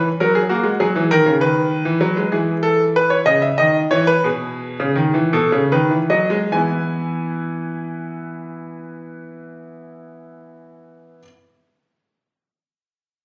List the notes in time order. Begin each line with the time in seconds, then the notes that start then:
0.20 F#3 A#4
0.35 G#4
0.49 A#3 F#4
0.63 G#3
0.80 F#3 G#4
0.96 E3
1.11 D#3 A#4
1.26 C#3
1.41 D#3 B4
1.85 E3
2.01 F#3
2.17 G#3
2.32 E3 G#4
2.63 A4
2.96 B4
3.10 C#5
3.26 C#3 D#5
3.42 E5
3.58 D#3 D#5
3.91 E3 C#5
4.07 B4
4.24 B2 G#4
4.80 C#3
4.95 D#3
5.14 E3
5.33 B2 A4
5.52 C#3
5.72 D#3 B4
5.91 E3
6.10 F#3 D#5
6.30 G#3
6.52 E3 B3 E4 G#5